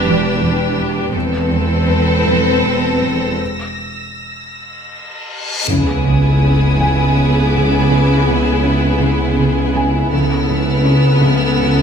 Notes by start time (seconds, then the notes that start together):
Already playing: E1 E2 D4 G4 B4 E6
0.05 E2
0.41 E2
0.78 E2
1.14 E1 E2 C4 A4 B4 E6
1.52 E2
1.87 E2 A#6
2.25 E2
2.64 E2
3.01 E2
3.40 reverse cymbal
5.68 C#2 C#3 B3 E4 G#4 G#5 D#6, sub drop
6.06 C#3
6.43 C#4 B5
6.80 C#3 G#5
7.16 C#3
7.54 C#3
7.61 D6
7.91 C#3
8.28 C#3
8.64 C#4
8.90 C6
9.01 C#3
9.38 C#3
9.75 C#3 G#5
10.11 C#2 C#3 B3 E4 A4 E6 F6
10.49 C#3
10.86 C#4
11.22 C#3
11.60 C#3